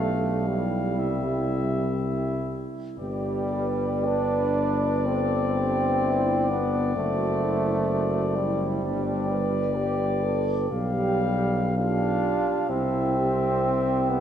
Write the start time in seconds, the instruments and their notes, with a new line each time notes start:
Already playing: tuba B1, trombone A3, euphonium G4, cornet F5
0.00 french horn section D4
0.48 trombone G3, french horn section E4
0.96 tuba C2, euphonium G4, cornet E5
2.98 tuba G1, trombone G3, french horn section G4, euphonium B4, cornet D5
3.54 french horn section B4
4.06 trombone D4
5.05 trombone C4, french horn section A4
5.55 french horn section G4
6.02 french horn section E4
6.50 trombone B3, french horn section D4
6.96 tuba F#1, trombone A3, french horn section F#4, euphonium C5
7.42 french horn section E4
7.89 french horn section F#4
8.36 trombone G3, french horn section E4
8.82 tuba G1, french horn section D4, cornet D5
9.29 french horn section B4
9.75 french horn section G4, euphonium B4
10.23 french horn section A4
10.70 tuba B1, trombone G3, euphonium G4, french horn section G4, cornet F5
11.75 trombone D4, french horn section F4, euphonium G4, cornet F5
12.69 tuba C2, trombone C4, french horn section E4, euphonium G4, cornet E5
13.17 french horn section G4
14.09 trombone B3